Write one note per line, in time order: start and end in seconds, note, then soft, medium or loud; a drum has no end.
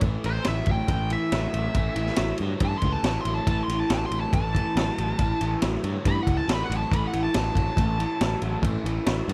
0.00 0.15 A1 medium
0.00 0.22 A2 medium
0.00 0.23 E3 medium
0.00 1.72 C#4 medium
0.00 1.72 E4 medium
0.00 1.72 A4 medium
0.00 1.72 E5 medium
0.00 kick loud
0.00 ride medium
0.24 0.38 A1 medium
0.24 0.44 A2 medium
0.24 0.44 E3 medium
0.24 0.46 C5 loud
0.24 ride medium
0.44 0.60 A1 medium
0.44 0.66 A2 medium
0.44 0.66 F#3 medium
0.44 0.68 E5 medium
0.44 snare loud
0.44 ride loud
0.66 0.80 A1 medium
0.66 0.88 A2 medium
0.66 0.88 F#3 medium
0.66 kick medium
0.66 ride medium
0.71 1.11 G5 medium
0.88 1.15 A1 medium
0.88 1.09 A2 medium
0.88 1.09 E3 medium
0.88 kick loud
0.88 ride medium
1.10 1.30 A2 medium
1.10 1.30 E3 medium
1.10 2.37 E5 medium
1.10 ride medium
1.32 1.46 A1 medium
1.32 1.52 A2 medium
1.32 1.52 F#3 medium
1.32 snare loud
1.32 ride medium
1.54 1.67 A1 medium
1.54 1.74 A2 medium
1.54 1.74 F#3 medium
1.54 ride medium
1.74 1.88 A1 medium
1.74 1.95 A2 medium
1.74 1.95 E3 medium
1.74 5.17 A4 medium
1.74 5.17 C#5 medium
1.74 5.17 E5 medium
1.74 kick loud
1.74 ride medium
1.80 5.18 E4 medium
1.96 2.09 A1 medium
1.96 2.16 A2 medium
1.96 2.16 E3 medium
1.96 ride medium
2.06 snare soft
2.16 2.31 A1 medium
2.16 2.38 A2 medium
2.16 2.38 F#3 medium
2.16 snare loud
2.16 ride loud
2.38 2.53 G2 medium
2.38 2.60 A2 medium
2.38 2.60 F#3 medium
2.38 ride medium
2.60 2.74 G2 medium
2.60 2.81 A2 medium
2.60 2.81 E3 medium
2.60 kick loud
2.60 ride medium
2.65 2.77 A5 loud
2.78 2.92 C6 loud
2.78 ride medium
2.82 2.96 C#2 medium
2.82 3.03 A2 medium
2.82 3.03 E3 medium
2.82 kick medium
2.92 3.04 A5 loud
3.03 3.17 A1 medium
3.03 3.23 A2 medium
3.03 3.24 F#3 loud
3.03 3.20 A5 medium
3.03 snare loud
3.03 ride medium
3.20 3.34 C6 medium
3.25 3.39 A1 medium
3.25 3.46 A2 medium
3.25 3.46 F#3 medium
3.25 ride medium
3.34 3.46 A5 medium
3.47 3.60 A1 medium
3.47 3.67 A2 medium
3.47 3.67 E3 medium
3.47 3.63 A5 loud
3.47 kick loud
3.47 ride medium
3.63 3.79 C6 medium
3.68 3.82 A1 medium
3.68 3.89 A2 medium
3.68 3.89 E3 medium
3.68 ride medium
3.79 3.91 A5 loud
3.90 4.03 A1 medium
3.90 4.10 A2 medium
3.90 4.10 F#3 medium
3.90 snare loud
3.90 ride loud
3.94 4.06 A5 medium
4.06 4.19 C6 medium
4.11 4.24 A1 medium
4.11 4.32 A2 medium
4.11 4.32 F#3 medium
4.11 ride medium
4.20 4.33 A5 medium
4.33 4.60 A1 medium
4.33 4.53 A2 medium
4.33 4.54 E3 medium
4.33 5.58 A5 loud
4.33 kick loud
4.33 ride medium
4.55 4.75 A2 medium
4.55 4.75 E3 medium
4.55 kick medium
4.55 ride medium
4.76 4.89 A1 medium
4.76 4.97 A2 medium
4.76 4.97 F#3 medium
4.76 snare loud
4.76 ride medium
4.98 5.11 A1 medium
4.98 5.17 A2 medium
4.98 5.18 F#3 medium
4.98 ride medium
5.19 5.33 A1 loud
5.19 5.39 A2 medium
5.19 5.39 E3 loud
5.19 5.35 F4 medium
5.19 5.34 A#4 medium
5.19 5.35 D5 medium
5.19 5.34 F5 medium
5.19 kick loud
5.19 ride medium
5.32 8.60 E4 medium
5.32 8.60 A4 medium
5.32 8.60 C#5 medium
5.32 8.60 E5 medium
5.41 5.54 A1 medium
5.41 5.60 A2 medium
5.41 5.60 E3 medium
5.41 ride medium
5.62 5.76 A1 medium
5.62 5.82 A2 medium
5.62 5.82 F#3 medium
5.62 snare loud
5.62 ride medium
5.84 5.97 G2 medium
5.84 6.03 A2 medium
5.84 6.03 F#3 medium
5.84 ride medium
6.05 6.18 G2 medium
6.05 6.25 A2 medium
6.05 6.25 E3 medium
6.05 6.20 B5 loud
6.05 kick loud
6.05 ride medium
6.23 6.40 C#2 medium
6.23 6.37 F#5 medium
6.27 6.46 A2 medium
6.27 6.46 E3 medium
6.27 kick medium
6.27 ride medium
6.37 6.49 A5 loud
6.48 6.62 A1 medium
6.48 6.67 A2 medium
6.48 6.67 F#3 medium
6.48 snare loud
6.48 ride loud
6.53 6.64 B5 loud
6.64 6.76 F#5 medium
6.70 6.83 A1 medium
6.70 6.89 A2 medium
6.70 6.89 F#3 medium
6.70 ride medium
6.77 6.91 A5 loud
6.91 7.05 A1 loud
6.91 7.11 A2 medium
6.91 7.11 E3 medium
6.91 7.05 B5 loud
6.91 kick medium
6.91 ride loud
7.07 7.23 F#5 medium
7.13 7.27 A1 medium
7.13 7.32 A2 medium
7.13 7.32 E3 medium
7.13 ride medium
7.23 7.34 A5 medium
7.34 7.48 A1 medium
7.34 7.54 A2 medium
7.34 7.54 F#3 medium
7.34 8.60 A5 loud
7.34 snare loud
7.34 ride loud
7.55 7.69 A1 medium
7.55 7.75 A2 medium
7.55 7.76 F#3 medium
7.55 kick medium
7.55 ride medium
7.77 8.04 A1 medium
7.77 7.97 A2 medium
7.77 7.97 E3 medium
7.77 kick loud
7.77 ride medium
7.99 8.18 A2 medium
7.99 8.19 E3 medium
7.99 ride medium
8.21 8.34 A1 medium
8.21 8.40 A2 medium
8.21 8.40 F#3 loud
8.21 snare loud
8.21 ride medium
8.42 8.55 A1 medium
8.42 8.61 A2 medium
8.42 8.62 F#3 medium
8.42 ride medium
8.61 8.76 A1 loud
8.61 8.83 A2 medium
8.61 8.83 E3 medium
8.61 9.33 C#4 medium
8.61 9.33 E4 medium
8.61 9.33 A4 medium
8.61 9.33 E5 medium
8.61 kick loud
8.61 ride medium
8.84 8.98 A1 medium
8.84 9.04 A2 medium
8.84 9.04 E3 medium
8.84 ride medium
9.06 9.20 A1 medium
9.06 9.26 A2 medium
9.06 9.26 F#3 medium
9.06 snare loud
9.06 ride medium
9.28 9.33 G2 medium
9.28 9.33 A2 medium
9.28 9.33 F#3 medium
9.28 ride medium